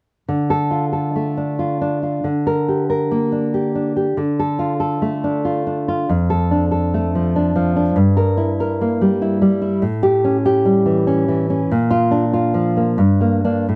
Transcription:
0.29 2.23 D3 soft
0.50 0.85 A4 medium
0.71 1.58 F4 soft
0.93 1.93 A4 soft
1.16 2.16 A3 soft
1.37 1.80 D4 soft
1.59 2.01 F4 soft
1.81 2.27 D4 soft
2.03 2.26 F4 soft
2.24 4.13 D3 soft
2.47 2.83 A#4 medium
2.68 3.53 G4 soft
2.90 3.86 A#4 soft
3.11 4.07 A#3 soft
3.32 3.74 D4 soft
3.54 3.95 G4 soft
3.75 4.17 D4 soft
3.96 4.18 G4 soft
4.17 6.05 D3 soft
4.39 4.73 A4 medium
4.59 5.44 F4 soft
4.80 5.77 A4 soft
5.02 5.99 A3 soft
5.24 5.65 D4 soft
5.45 5.87 F4 soft
5.67 6.10 D4 soft
5.88 6.10 F4 soft
6.09 7.93 F2 medium
6.30 6.64 A4 medium
6.51 7.35 D4 soft
6.71 7.65 A4 soft
6.94 7.87 A3 soft
7.15 7.54 F3 soft
7.36 7.75 D4 soft
7.56 7.97 F3 soft
7.76 7.97 D4 soft
7.96 9.78 G2 medium
8.17 8.51 A#4 medium
8.37 9.20 E4 soft
8.60 9.52 A#4 medium
8.81 9.72 A#3 soft
9.01 9.40 G3 soft
9.22 9.60 E4 medium
9.42 9.83 G3 soft
9.62 9.82 E4 medium
9.82 11.66 A2 medium
10.03 10.36 G4 medium
10.24 11.06 C#4 soft
10.46 11.39 G4 medium
10.65 11.59 G3 soft
10.86 11.27 E3 soft
11.07 11.49 C#4 medium
11.28 11.70 E3 soft
11.50 11.70 C#4 soft
11.71 12.96 A#2 medium
11.91 12.24 F4 medium
12.11 12.98 D4 soft
12.33 12.99 F4 medium
12.54 12.99 F3 soft
12.77 12.99 A#3 soft
12.98 13.66 G2 medium
13.21 13.43 A#3 soft
13.44 13.66 A#3 soft
13.44 13.66 D4 medium
13.69 13.76 A2 soft

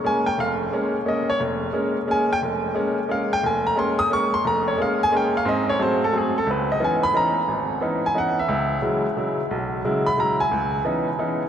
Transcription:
0.04 0.27 G#3 medium
0.04 0.27 A#3 medium
0.04 0.27 C#4 medium
0.04 0.26 G#5 medium
0.26 0.38 G5 medium
0.38 0.67 F1 medium
0.38 0.52 F5 medium
0.72 0.95 G#3 medium
0.72 0.95 A#3 medium
0.72 0.95 C#4 medium
1.05 1.28 G#3 soft
1.05 1.29 A#3 medium
1.05 1.29 C#4 medium
1.05 1.28 D#5 medium
1.30 1.40 C#5 medium
1.40 1.69 F1 medium
1.73 1.96 G#3 medium
1.73 1.96 A#3 soft
1.73 1.96 C#4 medium
2.07 2.30 G#3 medium
2.07 2.30 A#3 soft
2.07 2.30 C#4 medium
2.07 2.30 G#5 medium
2.33 2.39 G5 loud
2.42 2.71 F1 medium
2.75 2.97 G#3 medium
2.75 2.97 A#3 soft
2.75 2.98 C#4 medium
3.09 3.31 G#3 medium
3.09 3.31 A#3 soft
3.09 3.32 C#4 medium
3.09 3.31 F5 medium
3.33 3.43 G5 loud
3.43 3.72 F1 medium
3.43 3.65 G#5 medium
3.67 3.77 A#5 medium
3.76 3.99 G#3 medium
3.76 3.99 A#3 soft
3.76 3.99 C#4 medium
3.76 3.98 C6 medium
3.99 4.10 D#6 loud
4.10 4.33 G#3 medium
4.10 4.33 A#3 medium
4.10 4.33 C#4 medium
4.10 4.32 C#6 medium
4.34 4.44 C6 loud
4.45 4.73 F1 medium
4.45 4.66 A#5 medium
4.68 4.78 C#5 medium
4.78 5.00 G#3 medium
4.78 5.00 A#3 medium
4.78 5.01 C#4 medium
4.82 5.00 F5 medium
5.03 5.13 G#5 loud
5.12 5.34 G#3 medium
5.12 5.34 A#3 soft
5.12 5.34 C#4 medium
5.17 5.35 G5 medium
5.37 5.47 F5 medium
5.45 5.74 G#2 medium
5.45 5.74 C4 medium
5.45 5.68 D#5 medium
5.69 5.80 C#5 medium
5.79 6.01 F#3 medium
5.79 6.02 G#3 medium
5.79 6.02 A3 medium
5.79 6.02 C4 medium
5.79 6.01 C5 medium
6.04 6.14 A4 medium
6.12 6.35 F#3 medium
6.12 6.35 G#3 medium
6.12 6.35 A3 soft
6.12 6.36 C4 medium
6.17 6.36 G#4 medium
6.38 6.48 A4 medium
6.47 6.75 C#2 medium
6.47 6.69 B4 medium
6.72 6.81 D#5 medium
6.80 7.03 E3 medium
6.80 7.03 B3 medium
6.80 7.03 C#4 medium
6.80 7.03 D#4 medium
6.84 7.03 G#5 medium
7.03 7.14 B5 loud
7.14 7.36 E3 medium
7.14 7.36 B3 soft
7.14 7.36 C#4 soft
7.14 7.37 D#4 medium
7.14 7.79 A#5 medium
7.48 7.77 G#1 medium
7.81 8.04 E3 medium
7.81 8.04 B3 medium
7.81 8.04 C#4 medium
7.81 8.04 D#4 medium
8.06 8.16 G#5 medium
8.14 8.37 E3 medium
8.14 8.37 B3 soft
8.14 8.38 C#4 soft
8.14 8.38 D#4 medium
8.14 8.37 F#5 medium
8.39 8.81 E5 medium
8.49 8.78 C#2 medium
8.82 9.05 C#3 medium
8.82 9.05 F#3 medium
8.82 9.05 G#3 soft
8.82 9.05 E4 medium
9.17 9.39 C#3 medium
9.17 9.39 F#3 soft
9.17 9.39 G#3 soft
9.17 9.40 E4 medium
9.51 9.79 B1 medium
9.85 10.07 C#3 medium
9.85 10.07 F#3 medium
9.85 10.07 G#3 medium
9.85 10.07 E4 medium
10.06 10.18 B5 medium
10.17 10.40 C#3 medium
10.17 10.40 F#3 medium
10.17 10.40 G#3 soft
10.17 10.40 E4 medium
10.17 10.40 A#5 medium
10.40 10.82 G#5 medium
10.52 10.80 C#2 medium
10.85 11.07 E3 medium
10.85 11.08 B3 medium
10.85 11.08 C#4 soft
10.85 11.08 D#4 medium
11.19 11.41 E3 medium
11.19 11.42 B3 soft
11.19 11.42 C#4 soft
11.19 11.42 D#4 medium

